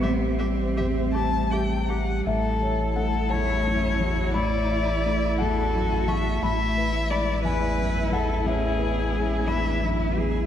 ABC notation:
X:1
M:6/8
L:1/8
Q:3/8=58
K:A
V:1 name="Violin"
e e e a =g f | A2 A c3 | d3 A2 e | e2 d B2 A |
G3 e z2 |]
V:2 name="Viola"
=G G G G G G | E6- | E6 | E6- |
E6 |]
V:3 name="Ambient pad"
[=G,=Ge]6 | [A,Ee]6- | [A,Ee]6 | [B,EB]6- |
[B,EB]6 |]
V:4 name="Cello"
=C4- C z | z3 E C F | E3 F3 | E3 E3 |
C B, C D E G |]
V:5 name="Felt piano"
z6 | e2 f a3 | b3 f2 c' | b2 b g2 f |
e3 b z2 |]
V:6 name="Felt piano" clef=bass
[A,,,=G] =G, E,, G e G | A,,, c A, E,, F,, E,, | A,,, e A, E,, F,, E,, | A,,, B G, E,, F,, E,, |
A,,, B G, E,, F,, E,, |]
V:7 name="Sub bass" clef=bass
A,,,6 | A,,,6- | A,,,6 | A,,,6- |
A,,,6 |]